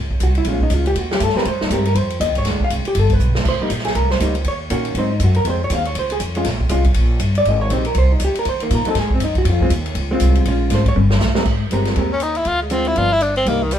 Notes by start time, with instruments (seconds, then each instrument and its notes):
Already playing: upright bass C#2
0.11 kick
0.20 upright bass C2, hollow-body jazz guitar F#4, hi-hat pedal, ride
0.35 hollow-body jazz guitar E4, ride
0.45 upright bass A#1, hollow-body jazz guitar G#3 C#4, kick, ride
0.49 hollow-body jazz guitar F4
0.60 hollow-body jazz guitar D#4, kick
0.70 upright bass C#2, hollow-body jazz guitar F4, kick, hi-hat pedal, ride
0.86 hollow-body jazz guitar G4, ride
0.95 upright bass D#2, hollow-body jazz guitar F#4, kick, ride
1.11 hollow-body jazz guitar G4, snare
1.20 upright bass G2, hollow-body jazz guitar A4, kick, hi-hat pedal, ride
1.29 snare
1.34 hollow-body jazz guitar G#3 C4 G4 A#4 B4, muted upright bass stroke, snare
1.45 upright bass G#2, hollow-body jazz guitar C5, kick, ride
1.52 upright bass G2
1.61 upright bass D#2, hollow-body jazz guitar D#4, snare
1.70 upright bass G2, hollow-body jazz guitar G#3 C4 G4 A#4, kick, hi-hat pedal, ride
1.85 hollow-body jazz guitar A#4, ride
1.95 upright bass F2, hollow-body jazz guitar C5, kick, ride
2.10 ride
2.20 upright bass D#2, hollow-body jazz guitar D#5, kick, hi-hat pedal, ride
2.29 upright bass C2
2.35 upright bass G#1, hollow-body jazz guitar C#5, ride
2.45 upright bass D2, hollow-body jazz guitar D3 G#3 D5, kick, snare, ride
2.60 muted upright bass stroke, kick
2.64 hollow-body jazz guitar F5
2.70 upright bass C2, kick, hi-hat pedal, ride
2.85 hollow-body jazz guitar G4, muted upright bass stroke, ride
2.95 upright bass G1, kick, ride
2.99 hollow-body jazz guitar A4
3.10 hollow-body jazz guitar B4, kick, ride
3.19 upright bass B1, hi-hat pedal
3.35 snare
3.45 upright bass C2, hollow-body jazz guitar C5, kick, crash
3.59 hollow-body jazz guitar G3 A#3 D#4, muted upright bass stroke
3.70 upright bass A#1, kick, hi-hat pedal, ride
3.78 snare
3.85 hollow-body jazz guitar G#4, snare, ride
3.95 upright bass C2, hollow-body jazz guitar A#4, kick, ride
4.10 hollow-body jazz guitar C5, snare
4.20 upright bass C#2, hollow-body jazz guitar G3 A#3 D#4, kick, hi-hat pedal, ride
4.35 ride
4.44 upright bass D#2, hollow-body jazz guitar C#5, kick, ride
4.70 upright bass A#2, hollow-body jazz guitar D#3 A#3 C#4 F#4, kick, hi-hat pedal, ride
4.85 ride
4.94 upright bass G#2, hollow-body jazz guitar F#3 C4 D#4, kick, ride
4.99 hollow-body jazz guitar C5
5.12 hollow-body jazz guitar D#4
5.20 upright bass F#2, kick, hi-hat pedal, ride
5.24 hollow-body jazz guitar F#4
5.34 hollow-body jazz guitar A#4, ride
5.45 upright bass F2, hollow-body jazz guitar G#3 C4 F4, kick, ride
5.50 hollow-body jazz guitar C5
5.64 hollow-body jazz guitar C#5
5.70 upright bass D#2, hollow-body jazz guitar G#3 C4 F4, kick, hi-hat pedal, ride
5.75 hollow-body jazz guitar F5
5.85 hollow-body jazz guitar C#5, ride
5.95 upright bass C#2, kick, ride
5.99 hollow-body jazz guitar C5
6.10 hollow-body jazz guitar G#4, ride
6.20 upright bass F2, kick, hi-hat pedal, ride
6.35 hollow-body jazz guitar G#3 C#4 F4, ride
6.45 upright bass A#1, kick, snare, ride
6.60 kick
6.69 upright bass C2, hollow-body jazz guitar G#3 C#4 F4, hi-hat pedal, ride
6.84 kick, ride
6.94 upright bass A#1, kick, ride
7.20 upright bass G1, kick, hi-hat pedal, ride
7.35 hollow-body jazz guitar D5, ride
7.45 upright bass G#1, hollow-body jazz guitar D#5, kick, ride
7.61 hollow-body jazz guitar C#5
7.70 upright bass A#1, hollow-body jazz guitar G#3 C4 D#4 G4 C5, kick, hi-hat pedal, ride
7.85 hollow-body jazz guitar A#4, ride
7.95 upright bass C2, hollow-body jazz guitar C5, kick, ride
8.12 hollow-body jazz guitar D#4
8.20 upright bass C#2, kick, hi-hat pedal, ride
8.25 hollow-body jazz guitar G4
8.35 muted upright bass stroke, ride
8.39 hollow-body jazz guitar A#4
8.45 upright bass D#2, hollow-body jazz guitar C5, kick, ride
8.60 hollow-body jazz guitar D#3 A#3, muted upright bass stroke, ride
8.70 upright bass A#2, kick, hi-hat pedal, ride
8.75 hollow-body jazz guitar A#4
8.85 hollow-body jazz guitar F#3 C4 D#4 A4, muted upright bass stroke, ride
8.95 upright bass G#2, kick, snare, ride
8.99 hollow-body jazz guitar G#4
9.10 hollow-body jazz guitar C4, kick
9.20 upright bass F#2, hollow-body jazz guitar D#4, kick, hi-hat pedal, ride
9.35 hollow-body jazz guitar F#4, kick, ride
9.45 upright bass F2, kick, ride
9.49 hollow-body jazz guitar F4
9.60 hollow-body jazz guitar G#3 C4 F4, kick
9.70 upright bass D#2, kick, hi-hat pedal, ride
9.86 ride
9.95 upright bass C#2, kick, ride
10.11 hollow-body jazz guitar G#3 C4 F4
10.20 upright bass C2, kick, hi-hat pedal, ride
10.35 ride
10.45 upright bass A#1, hollow-body jazz guitar G#3 C#4 F4, kick, ride
10.70 upright bass G#1, kick, snare, hi-hat pedal, ride
10.75 hollow-body jazz guitar C5
10.86 hollow-body jazz guitar C#5, kick, ride
10.95 upright bass G1, high tom
11.10 snare
11.20 upright bass A#1, snare, hi-hat pedal
11.35 hollow-body jazz guitar G#3 C4 G4 A#4, snare
11.45 upright bass G#1, kick, crash
11.70 upright bass G1, hollow-body jazz guitar G#3 C4 G4 A#4, hi-hat pedal, ride
11.85 snare, ride
11.96 upright bass D#2, hollow-body jazz guitar G#3 C4 G4 A#4, kick, ride
12.13 tenor saxophone C#4
12.20 tenor saxophone D#4, hi-hat pedal, ride
12.35 tenor saxophone E4, ride
12.45 upright bass D2, tenor saxophone F4, kick, ride
12.62 tenor saxophone G#3
12.70 hollow-body jazz guitar D3 G#3 C4 F4, tenor saxophone C4, hi-hat pedal, ride
12.85 tenor saxophone E4, ride
12.96 upright bass G1, hollow-body jazz guitar F3 B3 D4, tenor saxophone F4, kick, ride
13.13 tenor saxophone E4
13.21 tenor saxophone D4, hi-hat pedal, ride
13.36 tenor saxophone C4, ride
13.46 upright bass C2, hollow-body jazz guitar G3 A#3 D#4, tenor saxophone A#3, kick, ride
13.63 tenor saxophone D#3
13.71 tenor saxophone G3, hi-hat pedal, ride